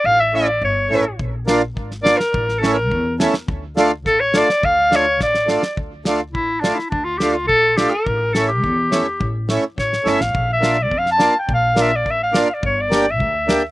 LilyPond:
<<
  \new Staff \with { instrumentName = "Clarinet" } { \time 2/4 \key d \minor \tempo 4 = 105 f''16 e''16 d''8 cis''4 | r4. d''16 bes'16~ | bes'8 a'16 bes'8. r8 | r4 a'16 cis''16 d''8 |
f''8 cis''8 d''8 d''8 | r4 e'8 d'16 e'16 | d'16 f'16 g'16 f'16 a'8 g'16 bes'16~ | bes'8 a'16 g'4~ g'16~ |
g'16 r8. cis''8 e''16 f''16~ | f''16 e''8 d''16 f''16 a''8 g''16 | f''8 e''16 d''16 e''16 f''8 d''16 | cis''16 d''8 e''4 r16 | }
  \new Staff \with { instrumentName = "Accordion" } { \time 2/4 \key d \minor r8 <a cis' e'>16 r8. <a cis' e'>16 r16 | r8 <bes d' f'>16 r8. <bes d' f'>16 r16 | r8 <a cis' e'>16 r8. <a cis' e'>16 r16 | r8 <a d' f'>16 r8. <a d' f'>16 r16 |
r8 <a d' f'>16 r8. <a d' f'>16 r16 | r8 <a d' f'>16 r8. <a d' f'>16 r16 | r8 <a d' f'>16 r8. <a d' f'>16 r16 | r8 <a cis' e'>16 r8. <a cis' e'>16 r16 |
r8 <a cis' e'>16 r8. <a cis' e'>16 r16 | r8 <bes d' f'>16 r8. <bes d' f'>16 r16 | r8 <bes d' f'>16 r8. <bes d' f'>16 r16 | r8 <bes d' g'>16 r8. <bes d' g'>16 r16 | }
  \new Staff \with { instrumentName = "Upright bass" } { \clef bass \time 2/4 \key d \minor a,,4 g,,8 a,,8 | bes,,4 gis,,4 | a,,4 e,4 | d,4 a,,4 |
d,4 a,,4 | d,4 a,,4 | d,4 bes,,4 | a,,4 e,4 |
a,,4 a,,8 g,,16 a,,16 | bes,,4 f,4 | bes,,4 a,,4 | g,,4 d,4 | }
  \new DrumStaff \with { instrumentName = "Drums" } \drummode { \time 2/4 r4 r4 | bd8 sn8 bd16 sn16 sn16 sn16 | bd16 sn16 sn8 bd8 sn16 sn16 | bd8 sn8 <bd sn>8 sn16 sn16 |
bd8 sn8 <bd sn>16 sn16 sn16 sn16 | bd8 sn8 bd8 sn16 sn16 | bd8 sn8 bd8 sn8 | bd8 sn8 bd8 sn8 |
bd8 sn8 <bd sn>16 sn16 sn16 sn16 | bd8 sn8 bd16 sn16 sn8 | bd8 sn8 bd8 sn8 | bd8 sn8 bd8 sn8 | }
>>